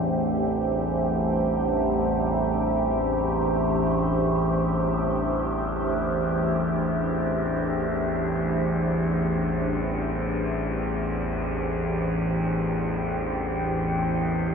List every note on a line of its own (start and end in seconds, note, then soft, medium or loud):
0.00 14.55 A1 medium
0.00 14.55 E2 medium
0.00 14.55 A3 medium
0.00 14.55 D4 medium
0.00 14.55 G4 medium
0.00 14.55 C5 medium
0.00 10.15 E5 medium
10.10 14.55 G5 medium